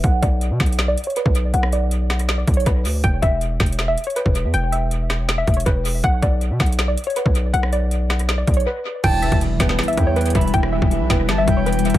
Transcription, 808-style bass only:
\new Staff \with { instrumentName = "808-style bass" } { \clef bass \time 4/4 \key e \dorian \tempo 4 = 160 b,,8 b,,8. b,16 b,,4 r8. b,,8. | b,,2~ b,,8 b,,8 b,,8 d,8 | e,,8 e,,4 e,,4 r8. e,,8 e,16 | e,,2~ e,,8 e,,8 e,,4 |
b,,8 b,,8. b,16 b,,4 r8. b,,8. | b,,2~ b,,8 b,,8 r4 | e,,8. e,,8. e,,8 r8 e,4 e,,8 | e,,8. e,,8 b,,16 e,,8 g,,8 e,,4~ e,,16 e,,16 | }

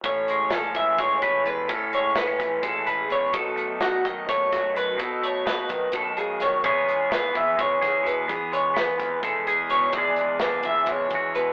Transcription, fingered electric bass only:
\new Staff \with { instrumentName = "Fingered electric bass" } { \clef bass \time 7/8 \key e \major \tempo 4 = 127 a,,4. a,,8 a,,8 a,,4 | a,4. a,,8 a,,4. | b,,4. b,,8 b,,8 b,,4 | b,4. b,,8 b,,4. |
e,4. e,8 e,8 e,4 | e4. e,8 e,4. | e,4. e,8 e,8 e,4 | }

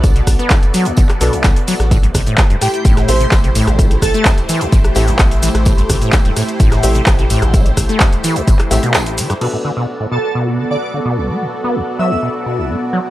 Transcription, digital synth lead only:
\new Staff \with { instrumentName = "Digital synth lead" } { \time 4/4 \key a \mixolydian \tempo 4 = 128 r1 | r4. g'16 g'16 r8 c''16 r4 r16 | r8 a'16 a'16 r2. | r1 |
r1 | r4. a'16 a'16 r8. d''16 d''16 r8. | r4. e''16 e''16 r2 | }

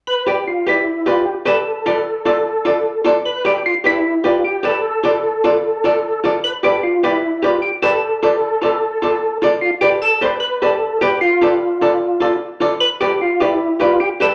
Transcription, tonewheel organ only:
\new Staff \with { instrumentName = "Tonewheel organ" } { \time 4/4 \key g \mixolydian \tempo 4 = 151 b'8 g'8 f'8 e'4 f'8 g'8 a'8~ | a'2.~ a'8 r8 | b'8 g'8 f'8 e'4 f'8 g'8 a'8~ | a'2.~ a'8 r8 |
b'8 g'8 f'8 e'4 f'8 g'8 a'8~ | a'2.~ a'8 r8 | f'8 g'8 a'8 c''8 b'8 a'4 g'8 | f'2. r4 |
b'8 g'8 f'8 e'4 f'8 g'8 a'8 | }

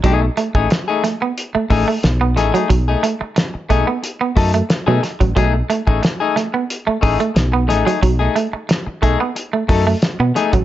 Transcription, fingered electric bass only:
\new Staff \with { instrumentName = "Fingered electric bass" } { \clef bass \time 4/4 \key b \mixolydian \tempo 4 = 90 b,,8 r16 a,,16 r4. a,,16 r16 b,,8 a,,16 r16 | b,,8 r4 b,,16 r8. fis,8 r16 b,16 r16 a,,16 | b,,8 r16 a,,16 r4. a,,16 r16 b,,8 a,,16 r16 | b,,8 r4 b,,16 r8. fis,8 r16 b,16 r16 a,,16 | }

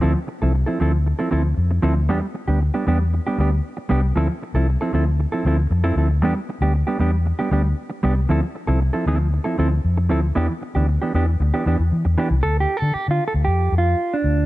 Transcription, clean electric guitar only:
\new Staff \with { instrumentName = "Clean electric guitar" } { \time 4/4 \key d \dorian \tempo 4 = 116 <f c' e' a'>16 r8 <f c' e' a'>16 r16 <f c' e' a'>16 <f c' e' a'>16 r8 <f c' e' a'>16 <f c' e' a'>16 r8. <f c' e' a'>16 r16 | <g b d' g'>16 r8 <g b d' g'>16 r16 <g b d' g'>16 <g b d' g'>16 r8 <g b d' g'>16 <g b d' g'>16 r8. <g b d' g'>16 r16 | <f c' e' a'>16 r8 <f c' e' a'>16 r16 <f c' e' a'>16 <f c' e' a'>16 r8 <f c' e' a'>16 <f c' e' a'>16 r8 <f c' e' a'>16 <f c' e' a'>16 r16 | <g b d' g'>16 r8 <g b d' g'>16 r16 <g b d' g'>16 <g b d' g'>16 r8 <g b d' g'>16 <g b d' g'>16 r8. <g b d' g'>16 r16 |
<f c' e' a'>16 r8 <f c' e' a'>16 r16 <f c' e' a'>16 <f c' e' a'>8 r16 <f c' e' a'>16 <f c' e' a'>16 r8. <f c' e' a'>16 r16 | <e b d' g'>16 r8 <e b d' g'>16 r16 <e b d' g'>16 <e b d' g'>16 r8 <e b d' g'>16 <e b d' g'>16 r8. <e b d' g'>16 r16 | \tuplet 3/2 { a'8 g'8 a'8 g'8 f'8 a'8 g'4 f'8~ f'8 d'4 } | }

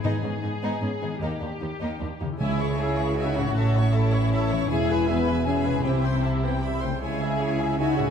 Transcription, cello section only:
\new Staff \with { instrumentName = "Cello section" } { \clef bass \time 3/4 \key cis \minor \tempo 4 = 156 gis,8 gis,8 gis,8 gis,8 gis,8 gis,8 | dis,8 dis,8 dis,8 dis,8 dis,8 dis,8 | cis2. | a,2. |
e,2. | c2~ c8 r8 | cis2. | }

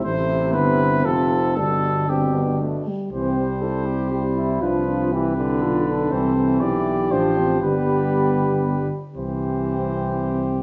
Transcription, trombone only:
\new Staff \with { instrumentName = "Trombone" } { \clef bass \time 3/4 \key c \major \tempo 4 = 119 c2 c4 | b,4 b,4. r8 | e8 g4. g4 | f4 e8 d4. |
e8 e4. f4 | g2~ g8 r8 | e2. | }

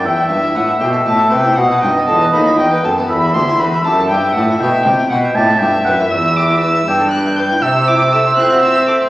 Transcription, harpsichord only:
<<
  \new Staff \with { instrumentName = "Harpsichord" } { \time 12/8 \key e \minor \tempo 4. = 79 r16 e''16 g'16 e'16 b'16 e''16 g'16 a'16 g'16 e''16 b'16 e'16 r16 b'16 dis'16 b16 a'16 b'16 dis'16 e'16 dis'16 b'16 a'16 b16 | r16 e''16 g'16 e'16 b'16 e''16 g'16 a'16 g'16 e''16 b'16 e'16 b16 e''16 g'16 e'16 b'16 e''16 g'16 a'16 g'16 e''16 b'16 e'16 | r16 e''16 g'16 e'16 b'16 e''16 g'16 a'16 g'16 e''16 b'16 e'16 r16 c''16 e'16 c'16 a'16 c''16 e'16 fis'16 e'16 c''16 a'16 c'16 | }
  \new Staff \with { instrumentName = "Harpsichord" } { \clef bass \time 12/8 \key e \minor e,8 g,8 a,8 b,8 a,8 c8 b,8 g,8 e,8 dis,8 e,8 fis,8 | e,8 d,8 e,8 fis,8 g,8 a,8 b,8 c8 b,8 a,8 g,8 fis,8 | e,4. g,4. c4. c'4. | }
>>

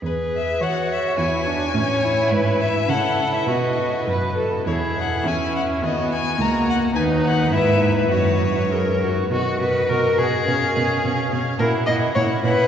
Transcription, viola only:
\new Staff \with { instrumentName = "Viola" } { \time 2/4 \key e \major \tempo 4 = 105 gis'4 fis'4 | e'8 d'8 cis'8 e'8~ | e'4 e'4 | fis'4 b'8 a'8 |
\key b \major e'4 cis'4 | b4 ais4 | dis'4 e'4 | fis'4 gis'8 fis'8 |
fis'8 fis'8 fis'8 fis'8 | cis'8 cis'8 cis'8 cis'8 | e'8 e'8 e'8 e'8 | }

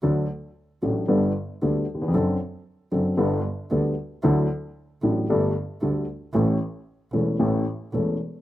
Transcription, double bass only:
\new Staff \with { instrumentName = "Double bass" } { \clef bass \time 4/4 \key d \major \tempo 4 = 114 d,8 r4 a,,8 g,,8 r8 d,8 r8 | fis,,8 r4 fis,,8 g,,8 r8 d,8 r8 | d,8 r4 a,,8 g,,8 r8 d,8 r8 | a,,8 r4 e,,8 a,,8 r8 e,,8 r8 | }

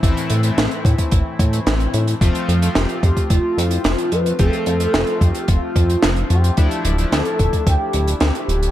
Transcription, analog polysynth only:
\new Staff \with { instrumentName = "Analog polysynth" } { \time 4/4 \key f \lydian \tempo 4 = 110 <a, e a c' e'>8. <a, e a c' e'>2.~ <a, e a c' e'>16 | <f a c' f'>8. <f a c' f'>2.~ <f a c' f'>16 | <f a c' f'>8. <f a c' f'>2.~ <f a c' f'>16 | <f a d' e'>8. <f a d' e'>2.~ <f a d' e'>16 | }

